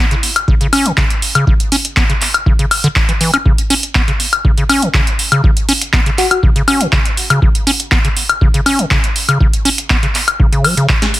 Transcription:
0.11 0.15 C#3 medium
0.11 closed hi-hat soft
0.23 open hi-hat loud
0.36 closed hi-hat medium
0.36 high woodblock medium
0.48 0.55 C#3 medium
0.48 kick loud
0.61 0.67 C#3 medium
0.61 closed hi-hat soft
0.73 0.87 C#4 loud
0.73 open hi-hat loud
0.73 high woodblock medium
0.86 0.92 C#3 loud
0.86 closed hi-hat medium
0.97 1.05 C#3 loud
0.97 kick loud
0.97 clap loud
1.10 closed hi-hat medium
1.22 open hi-hat loud
1.35 1.45 C#3 medium
1.35 closed hi-hat medium
1.35 high woodblock medium
1.47 kick loud
1.60 closed hi-hat soft
1.72 1.76 C#4 loud
1.72 open hi-hat loud
1.85 closed hi-hat medium
1.97 2.04 B3 loud
1.97 kick loud
1.97 clap loud
2.10 2.13 C#3 medium
2.10 closed hi-hat soft
2.21 clap soft
2.21 open hi-hat loud
2.34 closed hi-hat medium
2.34 high woodblock medium
2.46 2.53 C#3 medium
2.46 kick loud
2.59 2.66 C#3 medium
2.59 closed hi-hat soft
2.71 open hi-hat loud
2.71 high woodblock medium
2.84 2.88 D3 loud
2.84 closed hi-hat medium
2.96 kick loud
2.96 clap loud
3.09 3.13 E3 medium
3.09 closed hi-hat soft
3.21 3.31 E3 medium
3.21 open hi-hat medium
3.34 3.37 C#4 medium
3.34 closed hi-hat medium
3.34 high woodblock medium
3.45 3.53 C#3 medium
3.45 kick loud
3.58 closed hi-hat medium
3.70 3.74 C#4 loud
3.70 open hi-hat loud
3.83 closed hi-hat medium
3.95 4.02 B3 loud
3.95 kick loud
3.95 clap loud
4.08 4.12 C#3 medium
4.08 closed hi-hat soft
4.20 open hi-hat medium
4.33 closed hi-hat medium
4.33 high woodblock medium
4.45 4.52 C#3 medium
4.45 kick loud
4.57 4.64 C#3 medium
4.57 closed hi-hat soft
4.69 4.84 C#4 loud
4.69 open hi-hat loud
4.69 high woodblock medium
4.82 4.89 C#3 loud
4.82 closed hi-hat medium
4.94 5.01 C#3 loud
4.94 kick loud
4.94 clap loud
5.07 closed hi-hat medium
5.19 open hi-hat medium
5.32 5.42 C#3 medium
5.32 closed hi-hat medium
5.32 high woodblock medium
5.44 5.51 C#3 medium
5.44 kick loud
5.57 closed hi-hat medium
5.69 5.73 C#4 loud
5.69 open hi-hat loud
5.81 closed hi-hat medium
5.93 6.00 B3 loud
5.93 kick loud
5.93 clap loud
6.06 6.10 C#3 medium
6.06 closed hi-hat soft
6.18 6.26 F#4 medium
6.18 clap soft
6.18 open hi-hat medium
6.31 6.39 F#4 medium
6.31 closed hi-hat medium
6.31 high woodblock medium
6.43 6.50 C#3 medium
6.43 kick loud
6.56 6.62 C#3 medium
6.56 closed hi-hat soft
6.68 6.82 C#4 loud
6.68 open hi-hat loud
6.68 high woodblock medium
6.81 6.87 C#3 loud
6.81 closed hi-hat medium
6.92 7.00 C#3 loud
6.92 kick loud
6.92 clap loud
7.05 closed hi-hat medium
7.17 open hi-hat medium
7.30 7.40 C#3 medium
7.30 closed hi-hat medium
7.30 high woodblock medium
7.42 7.49 C#3 medium
7.42 kick loud
7.55 closed hi-hat medium
7.67 7.71 C#4 loud
7.67 open hi-hat loud
7.80 closed hi-hat medium
7.92 7.99 B3 loud
7.92 kick loud
7.92 clap loud
8.05 8.08 C#3 medium
8.05 closed hi-hat soft
8.17 open hi-hat medium
8.29 closed hi-hat medium
8.29 high woodblock medium
8.41 8.48 C#3 medium
8.41 kick loud
8.54 8.61 C#3 medium
8.54 closed hi-hat soft
8.66 8.80 C#4 loud
8.66 open hi-hat loud
8.66 high woodblock medium
8.79 8.85 C#3 loud
8.79 closed hi-hat medium
8.91 8.98 C#3 loud
8.91 kick loud
8.91 clap loud
9.04 closed hi-hat medium
9.16 open hi-hat medium
9.28 9.38 C#3 medium
9.28 closed hi-hat medium
9.28 high woodblock medium
9.40 9.48 C#3 medium
9.40 kick loud
9.53 closed hi-hat medium
9.65 9.69 C#4 loud
9.65 open hi-hat loud
9.78 closed hi-hat medium
9.90 9.97 B3 loud
9.90 kick loud
9.90 clap loud
10.03 10.07 C#3 medium
10.03 closed hi-hat soft
10.15 clap soft
10.15 open hi-hat medium
10.28 closed hi-hat medium
10.28 high woodblock medium
10.40 10.47 C#3 medium
10.40 kick loud
10.52 10.66 C#3 medium
10.52 closed hi-hat soft
10.64 10.75 F#3 medium
10.64 open hi-hat loud
10.64 high woodblock medium
10.77 10.87 C#3 medium
10.77 closed hi-hat medium
10.89 10.93 C#3 loud
10.89 kick loud
10.89 clap loud
11.02 11.06 C#4 medium
11.02 snare medium
11.02 closed hi-hat medium
11.14 open hi-hat medium

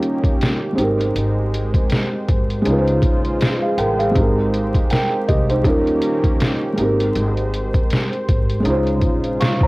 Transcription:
0.00 0.76 D#3 medium
0.00 0.76 G3 medium
0.00 0.76 A#3 medium
0.00 0.76 C#4 medium
0.00 0.77 C#4 medium
0.00 0.76 D#4 medium
0.00 0.78 F4 medium
0.00 2.61 G4 medium
0.00 0.79 A#4 medium
0.00 0.80 G5 medium
0.00 closed hi-hat medium
0.24 kick loud
0.24 closed hi-hat soft
0.41 snare loud
0.41 closed hi-hat loud
0.73 2.59 G#3 medium
0.73 2.60 C4 medium
0.77 1.12 G#1 medium
0.77 2.63 G#3 medium
0.77 2.61 D#4 medium
0.77 2.63 G4 medium
0.77 5.61 C5 medium
0.77 closed hi-hat medium
0.83 2.64 A#4 medium
1.01 closed hi-hat soft
1.16 1.70 G#1 loud
1.16 closed hi-hat medium
1.54 closed hi-hat medium
1.74 kick medium
1.74 closed hi-hat medium
1.90 snare loud
1.90 closed hi-hat medium
2.29 2.63 G#1 medium
2.29 kick medium
2.29 closed hi-hat medium
2.50 closed hi-hat soft
2.62 3.00 C#2 loud
2.62 4.14 C#3 medium
2.62 4.10 G#3 medium
2.62 4.12 C#4 medium
2.62 4.14 F4 medium
2.62 closed hi-hat medium
2.66 5.63 G#3 medium
2.66 4.13 D#4 medium
2.66 4.14 F4 medium
2.72 2.76 B4 medium
2.79 3.09 C5 medium
2.88 closed hi-hat soft
3.02 3.37 A#1 loud
3.02 kick medium
3.02 closed hi-hat medium
3.25 closed hi-hat soft
3.41 snare loud
3.41 closed hi-hat loud
3.62 3.78 G#4 medium
3.62 3.77 F5 medium
3.78 4.12 A1 medium
3.78 3.99 A#4 medium
3.78 3.98 G5 medium
3.78 closed hi-hat medium
3.99 4.35 G#4 medium
3.99 4.35 F5 medium
3.99 closed hi-hat soft
4.11 5.60 G#3 medium
4.11 5.61 C4 medium
4.15 4.70 G#1 loud
4.15 4.89 D#4 medium
4.15 8.62 G4 medium
4.15 4.91 G4 medium
4.15 kick loud
4.15 closed hi-hat medium
4.21 4.90 A#4 medium
4.54 closed hi-hat medium
4.74 kick medium
4.74 closed hi-hat medium
4.90 5.26 A#4 medium
4.90 5.26 G5 medium
4.90 snare loud
4.90 closed hi-hat medium
5.28 5.63 C2 medium
5.28 5.49 G4 medium
5.28 5.48 D#5 medium
5.28 kick medium
5.28 closed hi-hat medium
5.50 5.64 D#4 medium
5.50 5.85 C5 medium
5.50 closed hi-hat soft
5.63 5.99 D#2 loud
5.63 6.77 D#3 medium
5.63 6.77 G3 medium
5.63 6.77 A#3 medium
5.63 6.77 C#4 medium
5.63 6.77 D#4 medium
5.63 6.79 F4 medium
5.63 kick medium
5.63 closed hi-hat medium
5.69 6.79 A#4 medium
5.87 closed hi-hat soft
6.02 closed hi-hat medium
6.24 kick medium
6.24 closed hi-hat soft
6.40 snare loud
6.40 closed hi-hat loud
6.73 8.59 G#3 medium
6.73 8.63 G#3 medium
6.73 6.84 A#3 soft
6.77 7.12 G#1 medium
6.77 8.62 D#4 medium
6.77 8.63 G4 medium
6.77 9.67 C5 medium
6.77 closed hi-hat medium
6.82 8.64 C4 medium
6.82 8.64 A#4 medium
7.00 closed hi-hat medium
7.15 7.70 G#1 loud
7.15 closed hi-hat medium
7.37 closed hi-hat soft
7.54 closed hi-hat medium
7.74 kick medium
7.74 closed hi-hat medium
7.90 snare loud
7.90 closed hi-hat medium
8.13 closed hi-hat soft
8.28 8.62 G#1 medium
8.28 kick medium
8.28 closed hi-hat medium
8.49 closed hi-hat soft
8.60 9.67 G#3 medium
8.60 9.67 C#4 medium
8.65 9.02 C#2 loud
8.65 9.67 C#3 medium
8.65 9.67 G#3 medium
8.65 9.67 D#4 medium
8.65 9.67 F4 medium
8.65 closed hi-hat medium
8.70 9.41 C5 medium
8.87 closed hi-hat soft
9.02 9.36 A#1 medium
9.02 kick medium
9.02 closed hi-hat medium
9.24 closed hi-hat soft
9.40 9.61 F5 soft
9.40 9.61 C#6 medium
9.40 snare loud
9.40 closed hi-hat medium
9.61 9.67 C2 medium
9.61 9.67 C#5 medium
9.61 9.67 A#5 medium
9.61 kick loud

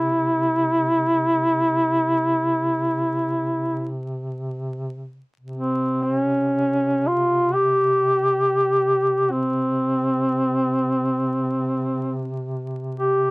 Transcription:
0.00 5.23 C3 soft
0.00 3.95 E4 medium
5.40 13.31 C3 soft
5.55 6.03 C4 medium
6.03 6.16 C4 medium
6.16 7.09 C#4 medium
7.07 7.55 F4 medium
7.53 9.33 G4 medium
9.31 12.35 C4 medium
12.98 13.31 G4 loud

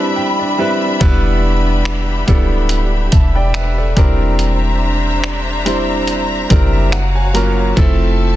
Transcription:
0.00 0.58 G3 medium
0.00 0.58 C4 medium
0.00 0.97 C4 medium
0.00 0.59 D4 medium
0.00 3.93 D4 medium
0.00 0.60 E4 medium
0.00 0.60 B4 medium
0.00 3.93 E5 medium
0.00 0.14 A5 medium
0.00 1.02 B5 medium
0.00 3.93 B5 medium
0.16 0.38 G5 medium
0.39 0.57 D5 medium
0.58 0.86 G3 medium
0.58 0.86 C4 medium
0.58 0.86 D4 medium
0.58 0.86 E4 medium
0.58 0.87 B4 medium
0.58 0.98 E5 medium
1.00 2.24 E1 loud
1.00 1.79 G3 loud
1.00 1.79 B3 medium
1.00 1.79 D4 medium
1.00 1.79 E4 medium
1.00 3.94 G4 medium
1.00 1.80 B4 loud
1.00 kick loud
1.00 closed hi-hat medium
1.85 finger snap loud
2.27 3.09 D1 loud
2.27 3.32 G3 medium
2.27 3.32 B3 medium
2.27 3.33 D4 medium
2.27 3.33 E4 medium
2.27 3.13 A4 medium
2.27 kick medium
2.27 closed hi-hat medium
2.69 closed hi-hat medium
3.12 3.94 E1 loud
3.12 3.35 E5 soft
3.12 3.34 A5 medium
3.12 kick medium
3.12 closed hi-hat medium
3.35 3.54 D5 medium
3.35 3.54 G5 medium
3.54 3.77 B4 medium
3.54 3.76 E5 medium
3.54 finger snap loud
3.54 closed hi-hat medium
3.78 4.18 A4 medium
3.78 4.18 D5 medium
3.96 6.46 E1 medium
3.96 5.32 G3 medium
3.96 5.33 C4 medium
3.96 6.90 D4 medium
3.96 5.33 D4 medium
3.96 5.33 E4 medium
3.96 5.34 A#4 medium
3.96 6.89 C5 medium
3.96 6.90 E5 medium
3.96 7.73 A#5 medium
3.96 kick loud
3.96 closed hi-hat medium
4.39 closed hi-hat medium
5.24 finger snap loud
5.65 6.18 G3 medium
5.65 6.18 C4 medium
5.65 6.18 D4 medium
5.65 6.19 E4 medium
5.65 6.19 C5 medium
5.65 closed hi-hat medium
6.07 closed hi-hat medium
6.49 7.73 F#1 loud
6.49 6.92 G3 medium
6.49 6.92 C4 medium
6.49 6.93 D4 medium
6.49 6.93 E4 medium
6.49 6.93 A#4 medium
6.49 6.72 D5 medium
6.49 kick medium
6.49 closed hi-hat medium
6.73 6.91 E5 medium
6.92 7.76 F#4 medium
6.92 7.76 C#5 medium
6.92 7.76 F5 medium
6.92 7.14 F#5 medium
6.92 finger snap loud
6.92 closed hi-hat medium
7.15 7.33 G#5 medium
7.34 7.61 F#3 medium
7.34 7.62 A#3 medium
7.34 7.62 C#4 medium
7.34 7.62 F4 medium
7.34 7.63 A#4 medium
7.34 7.74 A#5 medium
7.34 closed hi-hat medium
7.76 8.36 F1 loud
7.76 8.36 F3 loud
7.76 8.36 F3 medium
7.76 8.36 A3 medium
7.76 8.36 C4 medium
7.76 8.36 E4 medium
7.76 8.36 A4 loud
7.76 8.36 E5 medium
7.76 8.36 A5 medium
7.76 kick loud
7.76 closed hi-hat medium

